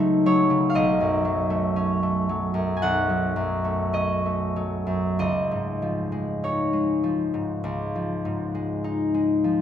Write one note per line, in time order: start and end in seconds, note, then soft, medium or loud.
0.00 0.79 C#2 medium
0.00 0.49 C#3 soft
0.00 0.25 F#3 soft
0.00 1.49 A3 soft
0.00 3.66 D#4 medium
0.00 2.19 F#5 medium
0.26 1.24 F#3 soft
0.26 4.16 C#5 medium
0.50 0.79 C#3 soft
0.70 0.80 F5 medium
0.75 2.82 B1 medium
0.75 3.92 D#5 medium
1.00 2.53 F#2 soft
1.25 2.28 F#3 soft
1.50 2.02 A3 soft
1.76 3.92 C#4 soft
2.03 3.63 A3 soft
2.29 3.08 F#3 soft
2.54 3.35 F#2 soft
2.77 2.87 G#5 medium
2.82 5.25 B1 medium
2.82 5.25 F#5 medium
3.10 4.55 F#3 soft
3.36 4.85 F#2 soft
3.64 4.25 A3 soft
3.93 7.83 C#4 soft
3.93 5.18 D#5 medium
4.26 5.25 A3 soft
4.56 5.25 F#3 soft
4.87 5.24 F#2 soft
5.19 7.62 C#2 medium
5.19 9.10 D#5 medium
5.51 7.33 G#2 soft
5.82 7.02 F3 soft
6.12 6.72 G#3 soft
6.44 8.83 D#4 soft
6.44 9.62 C#5 soft
6.73 8.53 G#3 soft
7.03 7.94 F3 soft
7.34 8.24 G#2 soft
7.64 9.62 C#2 soft
7.95 9.43 F3 soft
8.25 9.62 G#2 soft
8.55 9.13 G#3 soft
8.84 9.62 D#4 soft
9.14 9.62 G#3 soft
9.44 9.62 F3 soft